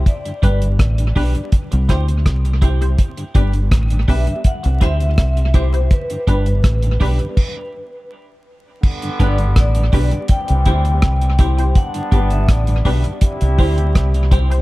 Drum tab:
CC |----------------|----------------|--------x-------|x---------------|
HH |xxxxxxoxxxxxxxxx|xxxxxxoxxxxxxxxx|xxxxxxox--------|-xxxxxoxxxxxxxxx|
SD |----r-----r-r---|----r-----r-r---|----r-----------|----r-------r---|
BD |o-o-o-o-o-o-o-o-|o-o-o-o-o-o-o-o-|o-o-o-o-o-------|o-o-o-o-o-o-o-o-|

CC |----------------|
HH |xxxxxxoxxxoxxxxx|
SD |----r-------r---|
BD |o-o-o-o-o-o-o-o-|